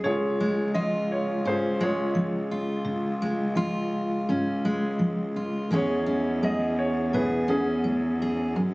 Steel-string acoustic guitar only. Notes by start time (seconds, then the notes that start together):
Already playing: G#3 C#4 G#4
0.04 C#3
0.40 G#3
0.75 F3 F4
1.45 G#2 C#4
1.81 G#3
2.15 F3
2.51 F4
2.85 C#3
3.22 G#3
3.55 F3 F4
4.29 G#2 C#4
4.65 G#3
4.99 F3
5.36 F4
5.71 E3 G#3 C#4 G#4
6.06 C#4
6.43 G#3 G#4
7.13 B2 G#4
7.48 C#4
7.84 G#3
8.22 G#4
8.56 F#2